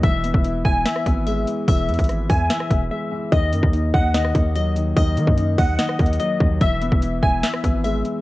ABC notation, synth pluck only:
X:1
M:4/4
L:1/8
Q:1/4=146
K:Fblyd
V:1 name="Synth pluck"
=e3 ^g e2 e2 | =e3 ^g e2 e2 | e3 g e2 e2 | e3 g e2 e2 |
=e3 ^g e2 e2 |]